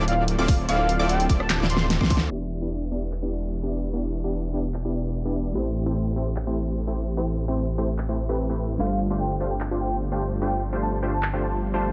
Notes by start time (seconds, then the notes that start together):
0.00 D1 C4 E4 F4 A4 D5 D6
0.08 F5, closed hi-hat
0.28 closed hi-hat
0.39 D1 C4 E4 F4 A4 D5 F5 D6
0.48 kick, open hi-hat
0.68 D1 C4 E4 F4 A4 D5 F5 D6, closed hi-hat
0.89 closed hi-hat
0.99 D1 C4 E4 F4 A4 D5 D6
1.09 G5, closed hi-hat
1.20 closed hi-hat
1.29 D1 C4 E4 F4 A4 D5 D6, kick, closed hi-hat
1.40 A5, cross-stick
1.50 snare, clap, closed hi-hat
1.60 D1 C4 E4 F4 A4 D5 D6, snare
1.70 C6, closed hi-hat
1.77 snare
1.90 snare, closed hi-hat
2.01 D2 C4 E4 F4 A4 D5 C6 D6, kick, snare
2.10 kick, open hi-hat
2.17 snare
2.29 E1 E3 B3 D4 E4 G4 B4 D5, downlifter
2.33 E5
2.62 B3 D4 E4 G4 D5
2.92 B3 D4 E4 G4 D5
3.12 clap
3.23 B3 D4 E4 G4 D5
3.63 B3 D4 E4 G4 D5
3.93 B3 D4 E4 G4 D5
4.24 B3 D4 E4 G4 D5
4.54 B3 D4 E4 G4 D5
4.74 clap
4.85 B3 D4 E4 G4 D5
5.25 B3 D4 E4 G4 D5
5.53 A1 A3 C4 E4 G4 A4 C5
5.57 C5
5.86 A3 C4 E4 G4 C5
6.16 A3 C4 E4 G4 C5
6.36 clap
6.47 A3 C4 E4 G4 C5
6.87 A3 C4 E4 G4 C5
7.17 A3 C4 E4 G4 C5
7.48 A3 C4 E4 G4 C5
7.78 A3 C4 E4 G4 C5
7.98 clap
8.09 A3 C4 E4 G4 C5
8.29 A3 C4 E4 G4 B4
8.49 A3 C4 E4 G4 B4
8.77 G1 F3 G3 A3 C4 D4 F4 G4 A4 C5 F5
8.81 C5
9.10 A3 D4 F4 G4 C5
9.20 G5
9.40 A3 D4 F4 G4 C5
9.51 G5
9.60 clap
9.71 A3 D4 F4 G4 C5
9.81 G5
10.11 A3 D4 F4 G4 C5 G5
10.41 A3 D4 F4 G4 C5 G5
10.73 A3 D4 F4 G4 C5
10.82 A5
11.03 A3 D4 F4 G4 C5
11.13 A5
11.23 clap
11.33 A3 D4 F4 G4 C5
11.43 A5
11.74 A3 D4 F4 G4 C5 A5